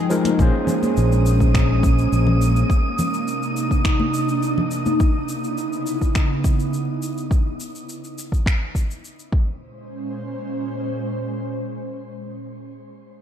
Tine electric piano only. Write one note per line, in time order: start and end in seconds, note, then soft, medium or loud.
0.00 0.10 F3 medium
0.00 0.10 G#3 medium
0.00 0.11 D#4 medium
0.00 0.41 G5 loud
0.10 0.35 F3 medium
0.10 0.36 G#3 medium
0.10 0.36 D#4 medium
0.10 0.36 A#4 medium
0.38 2.64 A#3 medium
0.38 2.64 C#4 medium
0.38 2.65 G#4 medium
0.42 2.66 C5 loud